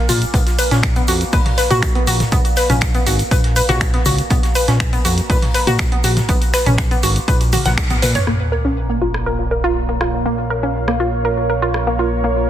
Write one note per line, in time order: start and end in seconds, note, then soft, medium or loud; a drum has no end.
0.00 8.26 A#2 medium
0.00 8.26 A#3 medium
0.09 0.25 A#1 loud
0.09 0.18 F4 medium
0.09 closed hi-hat medium
0.09 open hi-hat loud
0.09 mid tom medium
0.09 shaker medium
0.22 closed hi-hat soft
0.22 shaker soft
0.34 0.42 A#1 loud
0.34 0.43 B3 medium
0.34 kick loud
0.34 closed hi-hat medium
0.34 shaker medium
0.47 snare soft
0.47 closed hi-hat soft
0.47 shaker soft
0.59 0.71 B4 medium
0.59 closed hi-hat medium
0.59 open hi-hat loud
0.59 shaker loud
0.71 1.01 A#1 medium
0.71 0.80 C#4 medium
0.71 snare medium
0.71 closed hi-hat soft
0.71 shaker soft
0.83 finger snap loud
0.83 kick loud
0.83 snare loud
0.83 closed hi-hat medium
0.83 shaker soft
0.96 1.04 B3 medium
0.96 closed hi-hat soft
0.96 shaker soft
1.08 1.24 F2 loud
1.08 1.17 F#4 medium
1.08 closed hi-hat medium
1.08 open hi-hat medium
1.08 shaker medium
1.21 closed hi-hat soft
1.21 shaker soft
1.33 1.41 A#2 loud
1.33 1.42 B4 medium
1.33 kick loud
1.33 closed hi-hat medium
1.33 open hi-hat medium
1.33 shaker medium
1.45 snare soft
1.45 closed hi-hat soft
1.45 mid tom medium
1.58 1.70 B4 medium
1.58 snare medium
1.58 closed hi-hat medium
1.58 open hi-hat loud
1.58 shaker medium
1.70 2.01 A#2 medium
1.70 1.82 F#4 loud
1.70 closed hi-hat soft
1.70 mid tom medium
1.70 shaker soft
1.82 finger snap loud
1.82 kick loud
1.82 snare loud
1.82 closed hi-hat medium
1.82 shaker medium
1.95 2.04 B3 medium
1.95 closed hi-hat soft
2.07 2.24 A#1 loud
2.07 2.16 F#4 medium
2.07 closed hi-hat medium
2.07 open hi-hat loud
2.07 shaker medium
2.20 snare soft
2.20 closed hi-hat soft
2.20 mid tom medium
2.20 shaker soft
2.32 2.40 A#1 medium
2.32 2.41 B3 medium
2.32 kick loud
2.32 closed hi-hat medium
2.32 shaker medium
2.45 closed hi-hat soft
2.45 shaker soft
2.56 2.69 B4 medium
2.56 snare medium
2.56 closed hi-hat medium
2.56 open hi-hat loud
2.56 shaker medium
2.70 3.00 A#1 medium
2.70 2.78 C#4 medium
2.70 closed hi-hat soft
2.70 mid tom loud
2.70 shaker soft
2.81 finger snap loud
2.81 kick loud
2.81 snare loud
2.81 closed hi-hat medium
2.81 shaker soft
2.94 3.03 B3 medium
2.94 closed hi-hat soft
2.94 shaker soft
3.07 3.23 G#1 loud
3.07 3.15 F#4 medium
3.07 closed hi-hat medium
3.07 open hi-hat medium
3.07 shaker medium
3.19 closed hi-hat soft
3.19 shaker soft
3.31 3.62 A#1 loud
3.31 3.40 B4 medium
3.31 kick loud
3.31 closed hi-hat medium
3.31 shaker medium
3.44 snare soft
3.44 closed hi-hat soft
3.56 3.68 B4 medium
3.56 closed hi-hat medium
3.56 open hi-hat loud
3.56 shaker medium
3.69 3.99 A#1 loud
3.69 3.80 F#4 loud
3.69 snare medium
3.69 closed hi-hat soft
3.69 mid tom medium
3.69 shaker soft
3.81 finger snap loud
3.81 kick loud
3.81 snare loud
3.81 closed hi-hat medium
3.81 shaker medium
3.94 4.02 B3 medium
3.94 snare medium
3.94 closed hi-hat soft
4.05 4.22 C#2 loud
4.05 4.15 F#4 medium
4.05 closed hi-hat medium
4.05 open hi-hat medium
4.05 mid tom medium
4.05 shaker medium
4.18 closed hi-hat soft
4.18 shaker soft
4.30 4.39 A#1 medium
4.30 4.39 B3 medium
4.30 kick loud
4.30 closed hi-hat medium
4.30 shaker soft
4.43 snare soft
4.43 closed hi-hat soft
4.43 shaker soft
4.55 4.67 B4 medium
4.55 closed hi-hat medium
4.55 open hi-hat medium
4.55 shaker medium
4.67 4.98 A#1 medium
4.67 4.76 C#4 medium
4.67 snare medium
4.67 closed hi-hat soft
4.67 shaker soft
4.80 finger snap loud
4.80 kick loud
4.80 snare loud
4.80 closed hi-hat medium
4.80 shaker soft
4.93 5.01 B3 medium
4.93 closed hi-hat soft
4.93 shaker soft
5.05 5.21 F2 medium
5.05 5.14 F#4 medium
5.05 closed hi-hat medium
5.05 open hi-hat medium
5.05 shaker medium
5.18 closed hi-hat soft
5.18 shaker soft
5.30 5.38 A#2 loud
5.30 5.39 B4 medium
5.30 kick loud
5.30 closed hi-hat medium
5.30 open hi-hat medium
5.30 shaker medium
5.42 snare soft
5.42 closed hi-hat soft
5.42 mid tom medium
5.54 5.67 B4 medium
5.54 snare soft
5.54 closed hi-hat medium
5.54 open hi-hat loud
5.54 shaker medium
5.67 5.97 A#2 medium
5.67 5.79 F#4 loud
5.67 closed hi-hat soft
5.67 mid tom medium
5.67 shaker soft
5.79 finger snap loud
5.79 kick loud
5.79 snare loud
5.79 closed hi-hat medium
5.79 shaker medium
5.92 6.00 B3 medium
5.92 closed hi-hat soft
6.04 6.20 A#1 loud
6.04 6.13 F#4 medium
6.04 closed hi-hat medium
6.04 open hi-hat medium
6.04 shaker medium
6.17 snare medium
6.17 closed hi-hat soft
6.17 mid tom medium
6.17 shaker soft
6.29 6.37 A#1 medium
6.29 6.38 B3 medium
6.29 kick loud
6.29 closed hi-hat medium
6.29 shaker medium
6.42 closed hi-hat soft
6.42 shaker soft
6.54 6.66 B4 medium
6.54 finger snap soft
6.54 snare medium
6.54 closed hi-hat medium
6.54 open hi-hat loud
6.54 shaker medium
6.66 6.96 A#1 medium
6.66 6.75 C#4 medium
6.66 closed hi-hat soft
6.66 mid tom medium
6.66 shaker soft
6.78 finger snap loud
6.78 kick loud
6.78 snare loud
6.78 closed hi-hat medium
6.78 shaker soft
6.91 7.00 B3 medium
6.91 closed hi-hat soft
6.91 shaker soft
7.03 7.20 G#1 loud
7.03 7.12 F#4 medium
7.03 closed hi-hat medium
7.03 open hi-hat medium
7.03 shaker medium
7.16 closed hi-hat soft
7.16 shaker soft
7.28 7.58 A#1 loud
7.28 7.37 B4 medium
7.28 kick loud
7.28 closed hi-hat medium
7.28 shaker soft
7.41 closed hi-hat soft
7.41 shaker soft
7.52 7.62 F#4 medium
7.52 closed hi-hat medium
7.52 open hi-hat loud
7.52 high tom medium
7.52 shaker medium
7.65 7.96 A#1 loud
7.65 7.74 F#5 medium
7.65 snare medium
7.65 closed hi-hat soft
7.65 mid tom medium
7.65 shaker soft
7.78 finger snap loud
7.78 kick loud
7.78 snare loud
7.78 closed hi-hat medium
7.78 mid tom medium
7.78 shaker medium
7.90 7.95 B3 medium
7.90 snare soft
7.90 closed hi-hat soft
7.90 mid tom medium
7.90 shaker soft
8.02 8.19 A#2 loud
8.02 8.11 B4 medium
8.02 closed hi-hat medium
8.02 open hi-hat medium
8.02 mid tom medium
8.02 shaker medium
8.15 8.23 C#5 medium
8.15 closed hi-hat soft
8.15 mid tom medium
8.15 shaker soft
8.27 12.50 A#1 medium
8.27 12.50 A#2 medium
8.27 8.36 A#3 medium
8.27 12.50 A#3 medium
8.27 12.50 A#4 medium
8.27 12.50 C#5 medium
8.27 12.20 F5 medium
8.27 cross-stick soft
8.27 closed hi-hat medium
8.27 sub drop medium
8.40 snare soft
8.52 8.64 A#4 medium
8.52 closed hi-hat medium
8.65 8.73 C#4 medium
8.65 snare medium
8.77 closed hi-hat medium
8.89 8.98 A#3 medium
9.01 9.10 F4 medium
9.01 closed hi-hat medium
9.14 cross-stick soft
9.26 9.35 A#4 medium
9.26 open hi-hat medium
9.39 snare soft
9.51 9.63 A#4 medium
9.51 snare medium
9.51 closed hi-hat medium
9.64 9.75 F4 loud
9.76 closed hi-hat medium
9.89 9.97 A#3 medium
10.01 10.10 F4 medium
10.01 cross-stick soft
10.14 snare medium
10.25 10.34 A#3 medium
10.25 closed hi-hat medium
10.38 closed hi-hat soft
10.50 10.62 A#4 medium
10.50 snare soft
10.50 closed hi-hat medium
10.63 10.71 C#4 medium
10.75 closed hi-hat medium
10.88 10.96 A#3 medium
10.88 cross-stick soft
11.00 11.09 F4 medium
11.24 11.34 A#4 medium
11.24 closed hi-hat medium
11.38 snare soft
11.50 11.62 A#4 medium
11.61 11.74 F4 loud
11.61 snare medium
11.74 cross-stick soft
11.74 closed hi-hat medium
11.87 11.95 A#3 medium
11.87 snare soft
11.99 12.08 F4 medium
11.99 closed hi-hat medium
12.24 12.33 A#3 medium
12.24 12.50 D#5 medium
12.24 closed hi-hat medium
12.37 snare soft